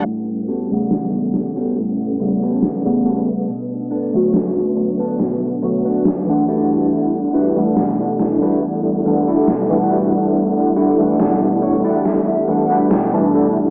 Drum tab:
SD |--oo--o-|--o-o-o-|--oo--o-|--o-o-o-|